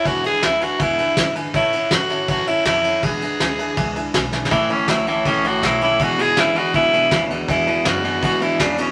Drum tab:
RD |x--x--x--x--x--x--x--x--|x--x--x--x--x--x--x--x--|x--x--x--x--x--x--x-----|x--x--x--x--x--x--x--x--|
SD |------o-----------o-----|------o--o--------o-----|------o-----------o--o-o|------o-----------o-----|
BD |o-----------o-----o-----|o-----------o-----o-----|o-----------o-----o-----|o-----------o-----o-----|

RD |x--x--x--x--x--x--x--x--|x--x--x--x--x--x--x--x--|
SD |------o-----------o-----|------o--o--------o-----|
BD |o-----------o-----o-----|o-----------o-----o-----|